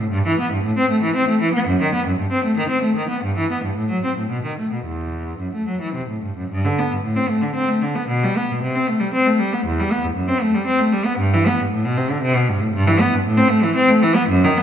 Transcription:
0.00 0.11 A2 medium
0.10 0.24 G2 medium
0.27 0.39 E3 medium
0.40 0.52 B3 medium
0.53 0.65 G2 medium
0.64 0.76 A2 medium
0.77 0.90 C4 medium
0.89 1.02 A3 medium
1.03 1.15 E3 medium
1.16 1.28 C4 medium
1.28 1.41 A3 medium
1.41 1.53 E3 medium
1.54 1.66 B3 medium
1.67 1.79 F#2 medium
1.81 1.93 D#3 medium
1.94 2.05 B3 medium
2.07 2.18 F#2 medium
2.18 2.30 G2 medium
2.31 2.43 C4 medium
2.44 2.56 A3 medium
2.57 2.69 D#3 medium
2.69 2.82 C4 medium
2.82 2.95 A3 medium
2.96 3.09 D#3 medium
3.09 3.22 B3 medium
3.24 3.36 G2 medium
3.37 3.49 E3 medium
3.51 3.63 B3 soft
3.64 3.76 G2 soft
3.76 3.89 A2 medium
3.90 4.02 F#3 soft
4.05 4.16 C4 soft
4.17 4.29 A2 soft
4.30 4.43 B2 medium
4.45 4.57 D#3 soft
4.59 4.71 A3 soft
4.72 4.85 B2 soft
4.85 5.39 E2 soft
5.39 5.53 F#2 soft
5.54 5.67 A3 soft
5.68 5.81 F#3 soft
5.81 5.94 E3 soft
5.94 6.08 C3 soft
6.09 6.22 A2 soft
6.22 6.36 G2 soft
6.37 6.50 F#2 soft
6.50 6.63 G2 medium
6.65 6.77 D3 medium
6.79 6.91 B3 soft
6.92 7.04 G2 soft
7.03 7.16 A2 soft
7.16 7.29 C4 medium
7.29 7.42 A3 medium
7.42 7.55 D3 soft
7.55 7.68 C4 medium
7.68 7.81 A3 medium
7.82 7.95 D3 soft
7.95 8.09 B3 soft
8.08 8.22 B2 medium
8.23 8.36 G3 medium
8.37 8.49 B3 medium
8.51 8.63 B2 medium
8.62 8.74 C3 medium
8.75 8.87 C4 medium
8.88 9.00 A3 soft
9.00 9.13 G3 medium
9.14 9.26 C4 medium
9.26 9.39 A3 medium
9.39 9.52 G3 medium
9.53 9.65 B3 medium
9.65 9.78 E2 medium
9.79 9.91 G3 medium
9.91 10.04 B3 medium
10.04 10.17 E2 medium
10.16 10.28 F#2 medium
10.28 10.41 C4 medium
10.41 10.54 A3 medium
10.54 10.67 G3 medium
10.66 10.79 C4 medium
10.79 10.93 A3 medium
10.93 11.06 G3 medium
11.05 11.20 B3 medium
11.18 11.33 G2 medium
11.34 11.47 E3 medium
11.47 11.60 B3 medium
11.60 11.73 G2 medium
11.71 11.85 A2 medium
11.85 11.98 B2 medium
11.97 12.11 C3 medium
12.10 12.23 D3 medium
12.23 12.36 C3 medium
12.36 12.49 B2 medium
12.49 12.62 G2 medium
12.61 12.74 A2 medium
12.73 12.86 G2 medium
12.87 13.00 E3 medium
13.00 13.13 B3 medium
13.14 13.26 G2 medium
13.26 13.37 A2 medium
13.37 13.50 C4 medium
13.49 13.62 A3 medium
13.63 13.75 E3 medium
13.75 13.88 C4 medium
13.88 14.01 A3 medium
14.02 14.15 E3 medium
14.15 14.28 B3 medium
14.29 14.41 F#2 medium
14.44 14.55 D#3 medium
14.57 14.63 B3 medium

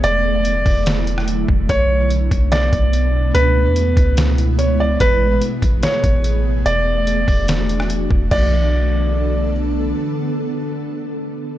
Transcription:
0.00 0.63 E1 loud
0.00 1.68 D3 medium
0.00 1.68 F#3 medium
0.00 1.66 A3 medium
0.00 1.68 E4 medium
0.00 0.83 D5 loud
0.00 closed hi-hat medium
0.45 closed hi-hat medium
0.66 1.45 E1 loud
0.66 kick loud
0.66 open hi-hat soft
0.86 snare loud
0.86 closed hi-hat medium
1.07 closed hi-hat medium
1.18 cross-stick loud
1.28 closed hi-hat medium
1.48 1.68 E1 loud
1.48 kick loud
1.69 2.29 B1 loud
1.69 6.62 B2 medium
1.69 3.33 A3 medium
1.69 3.33 B3 medium
1.69 3.33 D4 medium
1.69 2.08 C#5 loud
1.69 kick loud
1.69 closed hi-hat medium
2.10 closed hi-hat medium
2.31 2.71 B1 loud
2.31 kick loud
2.31 closed hi-hat medium
2.52 3.31 D5 medium
2.52 snare loud
2.52 closed hi-hat medium
2.73 3.32 B1 loud
2.73 kick loud
2.73 closed hi-hat medium
2.93 closed hi-hat medium
3.35 3.67 C#2 loud
3.35 4.99 G#3 medium
3.35 4.99 B3 medium
3.35 4.99 E4 medium
3.35 4.13 B4 loud
3.35 closed hi-hat medium
3.66 3.95 E2 loud
3.76 closed hi-hat medium
3.97 4.96 C#2 loud
3.97 kick loud
3.97 closed hi-hat medium
4.17 snare loud
4.17 closed hi-hat medium
4.38 closed hi-hat medium
4.59 4.78 C#5 medium
4.59 closed hi-hat medium
4.80 5.00 D5 medium
5.00 5.40 A1 loud
5.00 8.28 A3 medium
5.00 6.64 B3 medium
5.00 6.64 G#4 medium
5.00 5.39 B4 loud
5.00 kick loud
5.00 closed hi-hat medium
5.42 closed hi-hat medium
5.62 5.82 A1 loud
5.62 kick loud
5.62 closed hi-hat medium
5.83 6.62 C#5 medium
5.83 snare loud
5.83 closed hi-hat medium
6.04 6.63 A1 loud
6.04 kick loud
6.04 closed hi-hat medium
6.24 closed hi-hat medium
6.66 7.25 E1 loud
6.66 8.30 E3 medium
6.66 8.30 D4 medium
6.66 8.30 F#4 medium
6.66 7.45 D5 loud
6.66 closed hi-hat medium
7.07 closed hi-hat medium
7.28 8.07 E1 loud
7.28 kick loud
7.28 open hi-hat soft
7.48 snare loud
7.48 closed hi-hat medium
7.69 closed hi-hat medium
7.80 cross-stick loud
7.90 closed hi-hat medium
8.11 8.30 E1 loud
8.11 kick loud
8.31 9.93 B1 loud
8.31 11.58 D3 medium
8.31 11.58 B3 medium
8.31 11.58 D4 medium
8.31 11.58 A4 medium
8.31 9.52 D5 medium
8.31 kick loud
8.31 crash medium

